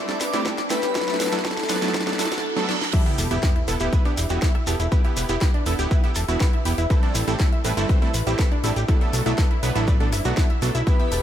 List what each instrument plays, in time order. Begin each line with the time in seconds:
Already playing: soft synth lead D5, digital synth lead D6, riser
0.09 supersaw synth G3 A3 C4 E4 A4, synth pluck E4, snare, closed hi-hat, shekere
0.20 analog synth bass A1, synth pluck B4, snare, open hi-hat, shekere
0.33 analog synth bass A1, supersaw synth G3 A3 C4 E4 G4, synth pluck E4, snare, closed hi-hat, shekere
0.46 supersaw synth G3 A3 C4 E4 A4, synth pluck B4, kick, snare, closed hi-hat, shekere
0.58 synth pluck D4, snare, closed hi-hat, shekere
0.70 analog synth bass A1, supersaw synth G3 A3 C4 E4 A4, synth pluck E4, soft synth lead B4, digital synth lead B5, snare, open hi-hat, shekere
0.82 analog synth bass A1, synth pluck G4, snare, closed hi-hat, shekere
0.95 supersaw synth F#3 A3 B3 D4 A4, synth pluck E4, kick, snare, closed hi-hat, shekere
1.01 snare
1.08 supersaw synth F#3 A3 B3 D4 A4, synth pluck E5, snare, closed hi-hat, shekere
1.14 snare
1.20 analog synth bass B1, synth pluck A4, snare, open hi-hat, shekere
1.26 snare
1.32 supersaw synth F#3 A3 B3 D4 A4, synth pluck E4, snare, closed hi-hat, shekere
1.39 snare
1.45 supersaw synth F#3 A3 B3 D4 A4, soft synth lead A4, synth pluck B4, digital synth lead A5, kick, snare, closed hi-hat, shekere
1.51 snare
1.57 synth pluck E4, snare, closed hi-hat, shekere
1.63 snare
1.69 analog synth bass B1, supersaw synth F#3 A3 B3 D4 B4, synth pluck B4, snare, open hi-hat, shekere
1.76 snare
1.82 analog synth bass A1, supersaw synth F#3 A3 B3 D4 A4, synth pluck E4, snare, closed hi-hat, shekere
1.88 snare
1.94 supersaw synth A3 D4 D5, synth pluck B4, kick, snare, closed hi-hat, reverse cymbal, shekere
2.01 snare
2.07 supersaw synth F#3 A3 B3 D4 A4, synth pluck D4, snare, closed hi-hat, shekere
2.13 snare
2.19 analog synth bass B1, supersaw synth F#3 A3 B3 D4 A4, synth pluck E4, soft synth lead A4, digital synth lead A5, snare, open hi-hat, shekere
2.25 snare
2.32 analog synth bass B1, synth pluck F#4, snare, closed hi-hat, shekere
2.38 snare
2.56 supersaw synth F#3 A3 B3 D4 A4, snare
2.69 supersaw synth F#3 A3 B3 D4 A4, snare
2.81 snare
2.93 supersaw synth B3 E4 G4, synth pluck E4 E5, kick, closed hi-hat, crash, sub drop, shekere
3.06 supersaw synth B3 E4 G4, synth pluck E5 E6, closed hi-hat
3.18 analog synth bass E1, synth pluck A4 A5, open hi-hat, shekere
3.31 analog synth bass E1, supersaw synth B3 E4 G4, synth pluck E4 E5, cross-stick, closed hi-hat, shekere
3.43 supersaw synth B3 E4 G4, synth pluck B4 B5, kick, snare, closed hi-hat, shekere
3.56 synth pluck E4 E5, closed hi-hat
3.68 analog synth bass E1, supersaw synth B3 E4 A4, synth pluck B4 B5, open hi-hat, shekere
3.80 analog synth bass D1, supersaw synth B3 E4 G4, synth pluck E4 E5, closed hi-hat, shekere
3.93 supersaw synth B3 E4 B4, synth pluck B4 B5, kick, closed hi-hat, shekere
4.05 supersaw synth B3 E4 G4, synth pluck D4 D5, closed hi-hat
4.17 analog synth bass E1, synth pluck E4 E5, open hi-hat, shekere
4.29 analog synth bass E1, supersaw synth B3 E4 F#4, synth pluck G4 G5, closed hi-hat, shekere
4.42 supersaw synth B3 E4, synth pluck E4 E5, kick, snare, closed hi-hat, shekere
4.55 synth pluck E5 E6, cross-stick, closed hi-hat
4.67 analog synth bass E1, supersaw synth B3 E4 G4, synth pluck A4 A5, open hi-hat, shekere
4.80 analog synth bass E1, synth pluck E4 E5, closed hi-hat, shekere
4.92 supersaw synth B3 E4 G4, synth pluck B4 B5, kick, closed hi-hat, shekere
5.05 supersaw synth B3 E4 G4, synth pluck E4 E5, closed hi-hat
5.17 analog synth bass E1, synth pluck B4 B5, open hi-hat, shekere
5.29 analog synth bass E1, supersaw synth B3 E4 G4, synth pluck E4 E5, cross-stick, closed hi-hat, shekere
5.41 supersaw synth B3 E4 G4, synth pluck B4 B5, kick, snare, closed hi-hat, shekere
5.54 synth pluck D4 D5, closed hi-hat
5.66 analog synth bass E1, supersaw synth B3 E4 A4, synth pluck E4 E5, open hi-hat, shekere
5.79 analog synth bass D1, supersaw synth B3 E4 G4, synth pluck G4 G5, closed hi-hat, shekere
5.91 supersaw synth B3 E4 B4, synth pluck E4 E5, kick, closed hi-hat, shekere
6.04 supersaw synth B3 E4 G4, synth pluck E5 E6, closed hi-hat
6.15 analog synth bass E1, synth pluck A4 A5, cross-stick, open hi-hat, shekere
6.28 analog synth bass E1, supersaw synth B3 E4 F#4, synth pluck E4 E5, closed hi-hat, shekere
6.40 supersaw synth B3 E4 G4, synth pluck B4 B5, kick, snare, closed hi-hat, shekere
6.53 synth pluck E4 E5, closed hi-hat
6.65 analog synth bass E1, supersaw synth B3 E4 G4, synth pluck B4 B5, open hi-hat, shekere
6.78 analog synth bass E1, synth pluck E4 E5, closed hi-hat, shekere
6.90 supersaw synth G3 A3 C4 E4 A4, synth pluck B4 B5, kick, closed hi-hat, shekere
7.03 supersaw synth G3 A3 C4 E4 A4, synth pluck D4 D5, closed hi-hat
7.15 analog synth bass A1, synth pluck E4 E5, open hi-hat, shekere
7.28 analog synth bass A1, supersaw synth G3 A3 C4 E4 A4, synth pluck G4 G5, cross-stick, closed hi-hat, shekere
7.39 supersaw synth G3 A3 C4 E4 A4, synth pluck E4 E5, kick, snare, closed hi-hat, shekere
7.52 synth pluck E5 E6, closed hi-hat
7.64 analog synth bass A1, supersaw synth G3 A3 C4 E4 B4, synth pluck A4 A5, open hi-hat, shekere
7.77 analog synth bass G1, supersaw synth G3 A3 C4 E4 A4, synth pluck E4 E5, closed hi-hat, shekere
7.89 supersaw synth G3 A3 C4 E4 C5, synth pluck B4 B5, kick, closed hi-hat, shekere
8.02 supersaw synth G3 A3 C4 E4 A4, synth pluck E4 E5, closed hi-hat
8.14 analog synth bass A1, synth pluck B4 B5, open hi-hat, shekere
8.27 analog synth bass A1, supersaw synth G3 A3 C4 E4 G4, synth pluck E4 E5, closed hi-hat, shekere
8.39 supersaw synth G3 A3 C4 E4 A4, synth pluck B4 B5, kick, snare, closed hi-hat, shekere
8.52 synth pluck D4 D5, cross-stick, closed hi-hat
8.64 analog synth bass A1, supersaw synth G3 A3 C4 E4 A4, synth pluck E4 E5, open hi-hat, shekere
8.76 analog synth bass A1, synth pluck G4 G5, closed hi-hat, shekere
8.88 supersaw synth F#3 A3 B3 D4 A4, synth pluck E4 E5, kick, closed hi-hat, shekere
9.01 supersaw synth F#3 A3 B3 D4 A4, synth pluck E5 E6, closed hi-hat
9.13 analog synth bass B1, synth pluck A4 A5, open hi-hat, shekere
9.26 analog synth bass B1, supersaw synth F#3 A3 B3 D4 A4, synth pluck E4 E5, cross-stick, closed hi-hat, shekere
9.38 supersaw synth F#3 A3 B3 D4 A4, synth pluck B4 B5, kick, snare, closed hi-hat, shekere
9.51 synth pluck E4 E5, closed hi-hat
9.63 analog synth bass B1, supersaw synth F#3 A3 B3 D4 B4, synth pluck B4 B5, open hi-hat, shekere
9.75 analog synth bass A1, supersaw synth F#3 A3 B3 D4 A4, synth pluck E4 E5, closed hi-hat, shekere
9.87 supersaw synth F#3 A3 B3 D4 D5, synth pluck B4 B5, kick, closed hi-hat, shekere
10.00 supersaw synth F#3 A3 B3 D4 A4, synth pluck D4 D5, closed hi-hat
10.12 analog synth bass F#1, synth pluck E4 E5, cross-stick, open hi-hat, shekere
10.25 analog synth bass B1, supersaw synth F#3 A3 B3 D4 F#4, synth pluck F#4 F#5, closed hi-hat, shekere
10.37 supersaw synth F#3 A3 B3 D4 A4, synth pluck E4 E5, kick, snare, closed hi-hat, shekere
10.50 synth pluck E5 E6, closed hi-hat
10.62 analog synth bass B1, supersaw synth F#3 A3 B3 D4 A4, synth pluck A4 A5, open hi-hat, shekere
10.75 analog synth bass B1, synth pluck E4 E5, closed hi-hat, shekere
10.87 supersaw synth B3 E4 G4, synth pluck E4 E5, soft synth lead B4, digital synth lead B5, kick, closed hi-hat, shekere
11.00 supersaw synth B3 E4 G4, synth pluck E5 E6, closed hi-hat
11.12 analog synth bass E1, synth pluck A4 A5, open hi-hat, shekere